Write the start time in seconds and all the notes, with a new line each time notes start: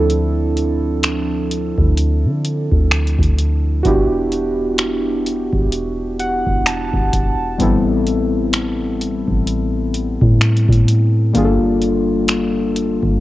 Already playing: D2 F3 C4 D4 E4 A4
0.10 closed hi-hat
0.57 closed hi-hat
1.03 finger snap, closed hi-hat
1.51 closed hi-hat
1.78 D2, kick
1.97 closed hi-hat
2.25 D3
2.45 closed hi-hat
2.72 D2, kick
2.91 finger snap, closed hi-hat
3.07 closed hi-hat
3.19 D2, kick
3.23 closed hi-hat
3.39 closed hi-hat
3.83 E1 B3 D4 E4 F#4, kick, closed hi-hat
3.88 G4
4.32 closed hi-hat
4.78 finger snap, closed hi-hat
5.26 closed hi-hat
5.53 E1, kick
5.72 closed hi-hat
6.19 F#5, closed hi-hat
6.46 E1, kick
6.66 A5, finger snap, closed hi-hat
6.93 E1, kick
7.13 E1, kick, closed hi-hat
7.58 A1 G3 B3 C4 E4, kick, closed hi-hat
7.63 A4
8.07 closed hi-hat
8.53 finger snap, closed hi-hat
9.01 closed hi-hat
9.28 A1, kick
9.47 closed hi-hat
9.94 closed hi-hat
10.21 A2, kick
10.41 finger snap, closed hi-hat
10.57 closed hi-hat
10.68 A2, kick
10.73 closed hi-hat
10.88 closed hi-hat
11.33 G1 G3 A#3 D4 F4, kick, closed hi-hat
11.38 G#4
11.44 A4
11.82 closed hi-hat
12.28 finger snap, closed hi-hat
12.76 closed hi-hat
13.03 G1, kick